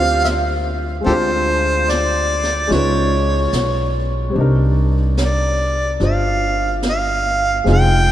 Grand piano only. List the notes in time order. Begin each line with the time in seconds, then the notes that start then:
Already playing: G3 A#3 D4 A#4
0.00 C4 F4 G4 C5
1.01 G#3 C4
1.06 D4 F4
1.11 C5
2.67 G#3 C#4 D#4 F4
2.73 B4
4.30 G3 C4
4.35 D4 D#4
4.41 A#4
6.00 D4 F4 C5
7.64 G#3 C4 D#4 F4
7.69 G#4